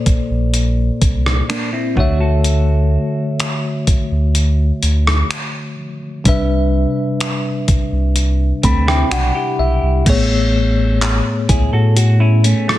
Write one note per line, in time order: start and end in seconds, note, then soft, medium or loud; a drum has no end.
0.00 1.92 A#2 medium
0.00 1.93 A#3 medium
0.00 1.93 A4 medium
0.00 1.94 C5 medium
0.00 1.95 D5 medium
0.06 0.16 A#1 soft
0.06 kick loud
0.06 closed hi-hat medium
0.30 0.91 A#1 medium
0.54 closed hi-hat medium
1.02 1.42 C2 medium
1.02 kick medium
1.02 closed hi-hat medium
1.26 cross-stick medium
1.49 1.72 A#3 medium
1.49 1.72 D4 medium
1.49 finger snap loud
1.49 closed hi-hat medium
1.73 1.96 C4 medium
1.73 1.96 E4 medium
1.96 2.98 D2 loud
1.96 5.73 D3 medium
1.96 5.74 A3 medium
1.96 2.20 D4 medium
1.96 2.19 F#4 medium
1.96 5.74 F#4 medium
1.96 5.75 C#5 medium
1.96 kick loud
2.00 5.76 E5 medium
2.21 3.60 F#4 medium
2.21 3.59 A4 medium
2.44 closed hi-hat medium
3.40 finger snap loud
3.40 closed hi-hat medium
3.87 3.97 D2 soft
3.87 kick medium
3.87 closed hi-hat medium
4.11 4.72 D2 medium
4.35 closed hi-hat medium
4.83 5.23 D2 medium
4.83 closed hi-hat medium
5.07 cross-stick loud
5.31 finger snap loud
5.31 closed hi-hat medium
6.24 6.86 C2 loud
6.24 10.02 C3 medium
6.24 10.02 G3 medium
6.24 10.03 D4 medium
6.24 10.04 B4 medium
6.24 kick loud
6.24 closed hi-hat medium
6.29 9.58 E5 medium
7.20 finger snap loud
7.20 closed hi-hat medium
7.68 7.78 C2 soft
7.68 kick loud
7.68 closed hi-hat medium
7.92 8.53 C2 loud
8.16 closed hi-hat medium
8.63 9.04 D2 medium
8.63 8.86 A3 medium
8.63 8.86 C4 medium
8.63 8.86 B5 medium
8.63 kick medium
8.63 closed hi-hat medium
8.87 9.10 C4 medium
8.87 9.10 E4 medium
8.87 9.10 G5 medium
8.87 cross-stick loud
9.11 9.31 B1 loud
9.11 9.34 D4 medium
9.11 9.34 F#4 medium
9.11 9.56 F#5 medium
9.11 finger snap loud
9.11 closed hi-hat medium
9.35 10.03 E4 medium
9.35 10.03 G4 medium
9.59 9.79 B1 medium
9.59 10.03 E5 medium
9.83 10.03 C2 medium
10.05 11.22 A1 loud
10.05 12.78 A2 medium
10.05 12.78 A3 medium
10.05 12.78 B3 medium
10.05 12.78 G#4 medium
10.05 kick loud
10.05 closed hi-hat medium
10.05 crash loud
10.10 12.78 C#5 medium
11.01 clap loud
11.01 closed hi-hat medium
11.49 11.69 C#2 medium
11.49 11.72 E4 medium
11.49 11.72 G#4 medium
11.49 kick loud
11.49 closed hi-hat medium
11.73 12.53 A2 loud
11.73 11.95 F#4 medium
11.73 11.96 A4 medium
11.97 12.19 F#4 medium
11.97 closed hi-hat medium
12.20 12.43 C#4 medium
12.20 12.43 E4 medium
12.44 12.67 A3 medium
12.44 12.67 C#4 medium
12.44 closed hi-hat medium
12.68 12.78 F#3 medium
12.68 12.78 A3 medium
12.68 cross-stick loud